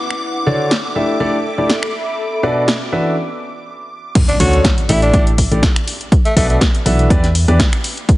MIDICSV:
0, 0, Header, 1, 8, 480
1, 0, Start_track
1, 0, Key_signature, 2, "major"
1, 0, Tempo, 491803
1, 214, Time_signature, 4, 2, 24, 8
1, 7979, End_track
2, 0, Start_track
2, 0, Title_t, "String machine"
2, 0, Program_c, 0, 50
2, 0, Note_on_c, 0, 86, 79
2, 4064, Note_off_c, 0, 86, 0
2, 7979, End_track
3, 0, Start_track
3, 0, Title_t, "Analog synth pad"
3, 0, Program_c, 1, 89
3, 0, Note_on_c, 1, 64, 70
3, 0, Note_on_c, 1, 71, 83
3, 0, Note_on_c, 1, 78, 72
3, 214, Note_on_c, 1, 62, 79
3, 370, Note_on_c, 1, 69, 81
3, 506, Note_off_c, 1, 64, 0
3, 506, Note_off_c, 1, 71, 0
3, 507, Note_off_c, 1, 78, 0
3, 536, Note_on_c, 1, 76, 76
3, 1414, Note_off_c, 1, 62, 0
3, 1478, Note_on_c, 1, 83, 77
3, 2135, Note_on_c, 1, 59, 72
3, 2525, Note_off_c, 1, 69, 0
3, 2525, Note_off_c, 1, 76, 0
3, 2525, Note_off_c, 1, 83, 0
3, 3095, Note_off_c, 1, 59, 0
3, 7979, End_track
4, 0, Start_track
4, 0, Title_t, "Grand piano"
4, 0, Program_c, 2, 0
4, 453, Note_on_c, 2, 50, 87
4, 453, Note_on_c, 2, 66, 81
4, 454, Note_on_c, 2, 62, 80
4, 454, Note_on_c, 2, 69, 81
4, 454, Note_on_c, 2, 73, 81
4, 454, Note_on_c, 2, 74, 94
4, 685, Note_off_c, 2, 50, 0
4, 685, Note_off_c, 2, 62, 0
4, 685, Note_off_c, 2, 66, 0
4, 685, Note_off_c, 2, 69, 0
4, 685, Note_off_c, 2, 73, 0
4, 685, Note_off_c, 2, 74, 0
4, 934, Note_on_c, 2, 57, 74
4, 934, Note_on_c, 2, 62, 67
4, 934, Note_on_c, 2, 64, 65
4, 934, Note_on_c, 2, 67, 68
4, 934, Note_on_c, 2, 69, 67
4, 934, Note_on_c, 2, 76, 79
4, 1147, Note_off_c, 2, 57, 0
4, 1147, Note_off_c, 2, 62, 0
4, 1147, Note_off_c, 2, 64, 0
4, 1147, Note_off_c, 2, 67, 0
4, 1147, Note_off_c, 2, 69, 0
4, 1147, Note_off_c, 2, 76, 0
4, 1172, Note_on_c, 2, 62, 82
4, 1172, Note_on_c, 2, 67, 81
4, 1172, Note_on_c, 2, 74, 97
4, 1173, Note_on_c, 2, 57, 88
4, 1173, Note_on_c, 2, 64, 80
4, 1173, Note_on_c, 2, 69, 80
4, 1324, Note_off_c, 2, 62, 0
4, 1324, Note_off_c, 2, 64, 0
4, 1324, Note_off_c, 2, 67, 0
4, 1324, Note_off_c, 2, 69, 0
4, 1324, Note_off_c, 2, 74, 0
4, 1325, Note_off_c, 2, 57, 0
4, 1542, Note_on_c, 2, 57, 73
4, 1542, Note_on_c, 2, 64, 64
4, 1542, Note_on_c, 2, 69, 64
4, 1542, Note_on_c, 2, 74, 79
4, 1543, Note_on_c, 2, 62, 66
4, 1543, Note_on_c, 2, 67, 66
4, 1679, Note_off_c, 2, 57, 0
4, 1679, Note_off_c, 2, 62, 0
4, 1679, Note_off_c, 2, 64, 0
4, 1679, Note_off_c, 2, 67, 0
4, 1679, Note_off_c, 2, 69, 0
4, 1679, Note_off_c, 2, 74, 0
4, 2374, Note_on_c, 2, 47, 88
4, 2374, Note_on_c, 2, 62, 83
4, 2374, Note_on_c, 2, 66, 78
4, 2374, Note_on_c, 2, 69, 83
4, 2374, Note_on_c, 2, 71, 82
4, 2374, Note_on_c, 2, 74, 98
4, 2605, Note_off_c, 2, 47, 0
4, 2605, Note_off_c, 2, 62, 0
4, 2605, Note_off_c, 2, 66, 0
4, 2605, Note_off_c, 2, 69, 0
4, 2605, Note_off_c, 2, 71, 0
4, 2605, Note_off_c, 2, 74, 0
4, 2854, Note_on_c, 2, 52, 71
4, 2854, Note_on_c, 2, 69, 68
4, 2854, Note_on_c, 2, 71, 69
4, 2854, Note_on_c, 2, 76, 80
4, 2855, Note_on_c, 2, 62, 68
4, 2855, Note_on_c, 2, 66, 67
4, 3067, Note_off_c, 2, 52, 0
4, 3067, Note_off_c, 2, 69, 0
4, 3067, Note_off_c, 2, 71, 0
4, 3067, Note_off_c, 2, 76, 0
4, 3068, Note_off_c, 2, 62, 0
4, 3068, Note_off_c, 2, 66, 0
4, 4294, Note_on_c, 2, 50, 95
4, 4294, Note_on_c, 2, 61, 89
4, 4294, Note_on_c, 2, 62, 87
4, 4294, Note_on_c, 2, 66, 88
4, 4294, Note_on_c, 2, 69, 86
4, 4294, Note_on_c, 2, 73, 104
4, 4525, Note_off_c, 2, 50, 0
4, 4525, Note_off_c, 2, 61, 0
4, 4525, Note_off_c, 2, 62, 0
4, 4525, Note_off_c, 2, 66, 0
4, 4525, Note_off_c, 2, 69, 0
4, 4525, Note_off_c, 2, 73, 0
4, 4773, Note_on_c, 2, 57, 80
4, 4773, Note_on_c, 2, 62, 73
4, 4773, Note_on_c, 2, 64, 75
4, 4773, Note_on_c, 2, 67, 73
4, 4773, Note_on_c, 2, 69, 73
4, 4773, Note_on_c, 2, 76, 89
4, 4987, Note_off_c, 2, 57, 0
4, 4987, Note_off_c, 2, 62, 0
4, 4987, Note_off_c, 2, 64, 0
4, 4987, Note_off_c, 2, 67, 0
4, 4987, Note_off_c, 2, 69, 0
4, 4987, Note_off_c, 2, 76, 0
4, 5013, Note_on_c, 2, 57, 96
4, 5013, Note_on_c, 2, 62, 89
4, 5013, Note_on_c, 2, 64, 88
4, 5013, Note_on_c, 2, 67, 89
4, 5013, Note_on_c, 2, 69, 86
4, 5013, Note_on_c, 2, 74, 108
4, 5165, Note_off_c, 2, 57, 0
4, 5165, Note_off_c, 2, 62, 0
4, 5165, Note_off_c, 2, 64, 0
4, 5165, Note_off_c, 2, 67, 0
4, 5165, Note_off_c, 2, 69, 0
4, 5165, Note_off_c, 2, 74, 0
4, 5382, Note_on_c, 2, 57, 76
4, 5382, Note_on_c, 2, 62, 70
4, 5382, Note_on_c, 2, 64, 71
4, 5382, Note_on_c, 2, 67, 70
4, 5382, Note_on_c, 2, 69, 69
4, 5382, Note_on_c, 2, 74, 85
4, 5519, Note_off_c, 2, 57, 0
4, 5519, Note_off_c, 2, 62, 0
4, 5519, Note_off_c, 2, 64, 0
4, 5519, Note_off_c, 2, 67, 0
4, 5519, Note_off_c, 2, 69, 0
4, 5519, Note_off_c, 2, 74, 0
4, 6212, Note_on_c, 2, 47, 95
4, 6212, Note_on_c, 2, 62, 89
4, 6212, Note_on_c, 2, 66, 91
4, 6212, Note_on_c, 2, 71, 88
4, 6212, Note_on_c, 2, 74, 110
4, 6213, Note_on_c, 2, 69, 89
4, 6444, Note_off_c, 2, 47, 0
4, 6444, Note_off_c, 2, 62, 0
4, 6444, Note_off_c, 2, 66, 0
4, 6444, Note_off_c, 2, 69, 0
4, 6444, Note_off_c, 2, 71, 0
4, 6444, Note_off_c, 2, 74, 0
4, 6692, Note_on_c, 2, 69, 74
4, 6692, Note_on_c, 2, 71, 75
4, 6692, Note_on_c, 2, 76, 89
4, 6693, Note_on_c, 2, 52, 79
4, 6693, Note_on_c, 2, 62, 75
4, 6693, Note_on_c, 2, 66, 76
4, 6906, Note_off_c, 2, 71, 0
4, 6906, Note_off_c, 2, 76, 0
4, 6907, Note_off_c, 2, 52, 0
4, 6907, Note_off_c, 2, 62, 0
4, 6907, Note_off_c, 2, 66, 0
4, 6907, Note_off_c, 2, 69, 0
4, 6933, Note_on_c, 2, 52, 98
4, 6933, Note_on_c, 2, 62, 91
4, 6933, Note_on_c, 2, 64, 88
4, 6933, Note_on_c, 2, 67, 91
4, 6933, Note_on_c, 2, 71, 90
4, 6933, Note_on_c, 2, 74, 107
4, 7084, Note_off_c, 2, 52, 0
4, 7084, Note_off_c, 2, 64, 0
4, 7084, Note_off_c, 2, 67, 0
4, 7084, Note_off_c, 2, 71, 0
4, 7084, Note_off_c, 2, 74, 0
4, 7085, Note_off_c, 2, 62, 0
4, 7302, Note_on_c, 2, 52, 77
4, 7302, Note_on_c, 2, 62, 73
4, 7302, Note_on_c, 2, 64, 71
4, 7302, Note_on_c, 2, 71, 73
4, 7302, Note_on_c, 2, 74, 85
4, 7303, Note_on_c, 2, 67, 72
4, 7439, Note_off_c, 2, 52, 0
4, 7439, Note_off_c, 2, 62, 0
4, 7439, Note_off_c, 2, 64, 0
4, 7439, Note_off_c, 2, 67, 0
4, 7439, Note_off_c, 2, 71, 0
4, 7439, Note_off_c, 2, 74, 0
4, 7979, End_track
5, 0, Start_track
5, 0, Title_t, "Tenor saxophone"
5, 0, Program_c, 3, 66
5, 4182, Note_on_c, 3, 62, 89
5, 4271, Note_off_c, 3, 62, 0
5, 4293, Note_on_c, 3, 66, 93
5, 4506, Note_off_c, 3, 66, 0
5, 4773, Note_on_c, 3, 64, 90
5, 4877, Note_off_c, 3, 64, 0
5, 4903, Note_on_c, 3, 62, 89
5, 5112, Note_off_c, 3, 62, 0
5, 6102, Note_on_c, 3, 57, 91
5, 6191, Note_off_c, 3, 57, 0
5, 6214, Note_on_c, 3, 57, 91
5, 6297, Note_off_c, 3, 57, 0
5, 6342, Note_on_c, 3, 57, 77
5, 6413, Note_off_c, 3, 57, 0
5, 7979, End_track
6, 0, Start_track
6, 0, Title_t, "FM bass"
6, 0, Program_c, 4, 39
6, 4293, Note_on_c, 4, 38, 97
6, 4502, Note_off_c, 4, 38, 0
6, 4774, Note_on_c, 4, 33, 99
6, 4992, Note_off_c, 4, 33, 0
6, 5013, Note_on_c, 4, 33, 100
6, 5357, Note_off_c, 4, 33, 0
6, 5383, Note_on_c, 4, 33, 99
6, 5494, Note_off_c, 4, 33, 0
6, 6213, Note_on_c, 4, 35, 96
6, 6422, Note_off_c, 4, 35, 0
6, 6693, Note_on_c, 4, 35, 98
6, 6911, Note_off_c, 4, 35, 0
6, 6933, Note_on_c, 4, 40, 98
6, 7277, Note_off_c, 4, 40, 0
6, 7302, Note_on_c, 4, 40, 98
6, 7413, Note_off_c, 4, 40, 0
6, 7979, End_track
7, 0, Start_track
7, 0, Title_t, "Impact"
7, 0, Program_c, 5, 103
7, 4054, Note_on_c, 5, 60, 74
7, 5974, Note_off_c, 5, 60, 0
7, 7979, End_track
8, 0, Start_track
8, 0, Title_t, "Drums"
8, 102, Note_on_c, 9, 26, 57
8, 200, Note_off_c, 9, 26, 0
8, 694, Note_on_c, 9, 38, 106
8, 792, Note_off_c, 9, 38, 0
8, 1655, Note_on_c, 9, 38, 108
8, 1753, Note_off_c, 9, 38, 0
8, 1783, Note_on_c, 9, 26, 80
8, 1881, Note_off_c, 9, 26, 0
8, 2615, Note_on_c, 9, 38, 108
8, 2712, Note_off_c, 9, 38, 0
8, 4053, Note_on_c, 9, 36, 119
8, 4054, Note_on_c, 9, 42, 69
8, 4054, Note_on_c, 9, 49, 104
8, 4151, Note_off_c, 9, 36, 0
8, 4151, Note_off_c, 9, 42, 0
8, 4151, Note_off_c, 9, 49, 0
8, 4184, Note_on_c, 9, 42, 42
8, 4282, Note_off_c, 9, 42, 0
8, 4295, Note_on_c, 9, 46, 106
8, 4392, Note_off_c, 9, 46, 0
8, 4424, Note_on_c, 9, 42, 42
8, 4521, Note_off_c, 9, 42, 0
8, 4533, Note_on_c, 9, 36, 116
8, 4535, Note_on_c, 9, 38, 123
8, 4535, Note_on_c, 9, 42, 71
8, 4631, Note_off_c, 9, 36, 0
8, 4632, Note_off_c, 9, 42, 0
8, 4633, Note_off_c, 9, 38, 0
8, 4664, Note_on_c, 9, 42, 40
8, 4761, Note_off_c, 9, 42, 0
8, 4773, Note_on_c, 9, 46, 110
8, 4871, Note_off_c, 9, 46, 0
8, 4903, Note_on_c, 9, 42, 40
8, 5000, Note_off_c, 9, 42, 0
8, 5013, Note_on_c, 9, 36, 118
8, 5013, Note_on_c, 9, 42, 70
8, 5110, Note_off_c, 9, 42, 0
8, 5111, Note_off_c, 9, 36, 0
8, 5143, Note_on_c, 9, 42, 41
8, 5240, Note_off_c, 9, 42, 0
8, 5253, Note_on_c, 9, 36, 60
8, 5253, Note_on_c, 9, 46, 106
8, 5351, Note_off_c, 9, 36, 0
8, 5351, Note_off_c, 9, 46, 0
8, 5384, Note_on_c, 9, 42, 42
8, 5481, Note_off_c, 9, 42, 0
8, 5493, Note_on_c, 9, 36, 118
8, 5494, Note_on_c, 9, 42, 72
8, 5495, Note_on_c, 9, 38, 126
8, 5591, Note_off_c, 9, 36, 0
8, 5592, Note_off_c, 9, 38, 0
8, 5592, Note_off_c, 9, 42, 0
8, 5625, Note_on_c, 9, 26, 80
8, 5625, Note_on_c, 9, 42, 41
8, 5722, Note_off_c, 9, 26, 0
8, 5722, Note_off_c, 9, 42, 0
8, 5735, Note_on_c, 9, 46, 106
8, 5832, Note_off_c, 9, 46, 0
8, 5864, Note_on_c, 9, 42, 42
8, 5962, Note_off_c, 9, 42, 0
8, 5973, Note_on_c, 9, 36, 127
8, 5975, Note_on_c, 9, 42, 69
8, 6071, Note_off_c, 9, 36, 0
8, 6072, Note_off_c, 9, 42, 0
8, 6104, Note_on_c, 9, 42, 40
8, 6201, Note_off_c, 9, 42, 0
8, 6213, Note_on_c, 9, 36, 65
8, 6214, Note_on_c, 9, 46, 113
8, 6310, Note_off_c, 9, 36, 0
8, 6312, Note_off_c, 9, 46, 0
8, 6344, Note_on_c, 9, 42, 40
8, 6442, Note_off_c, 9, 42, 0
8, 6453, Note_on_c, 9, 36, 121
8, 6455, Note_on_c, 9, 42, 67
8, 6456, Note_on_c, 9, 38, 122
8, 6551, Note_off_c, 9, 36, 0
8, 6553, Note_off_c, 9, 38, 0
8, 6553, Note_off_c, 9, 42, 0
8, 6584, Note_on_c, 9, 42, 41
8, 6682, Note_off_c, 9, 42, 0
8, 6695, Note_on_c, 9, 46, 109
8, 6792, Note_off_c, 9, 46, 0
8, 6824, Note_on_c, 9, 42, 39
8, 6921, Note_off_c, 9, 42, 0
8, 6933, Note_on_c, 9, 36, 125
8, 6935, Note_on_c, 9, 42, 68
8, 7030, Note_off_c, 9, 36, 0
8, 7032, Note_off_c, 9, 42, 0
8, 7063, Note_on_c, 9, 42, 41
8, 7064, Note_on_c, 9, 38, 38
8, 7161, Note_off_c, 9, 42, 0
8, 7162, Note_off_c, 9, 38, 0
8, 7174, Note_on_c, 9, 46, 115
8, 7272, Note_off_c, 9, 46, 0
8, 7304, Note_on_c, 9, 42, 41
8, 7401, Note_off_c, 9, 42, 0
8, 7413, Note_on_c, 9, 36, 124
8, 7414, Note_on_c, 9, 42, 69
8, 7415, Note_on_c, 9, 38, 125
8, 7511, Note_off_c, 9, 36, 0
8, 7512, Note_off_c, 9, 42, 0
8, 7513, Note_off_c, 9, 38, 0
8, 7544, Note_on_c, 9, 26, 80
8, 7544, Note_on_c, 9, 42, 40
8, 7641, Note_off_c, 9, 26, 0
8, 7641, Note_off_c, 9, 42, 0
8, 7654, Note_on_c, 9, 46, 109
8, 7751, Note_off_c, 9, 46, 0
8, 7784, Note_on_c, 9, 42, 41
8, 7881, Note_off_c, 9, 42, 0
8, 7893, Note_on_c, 9, 36, 123
8, 7894, Note_on_c, 9, 42, 66
8, 7979, Note_off_c, 9, 36, 0
8, 7979, Note_off_c, 9, 42, 0
8, 7979, End_track
0, 0, End_of_file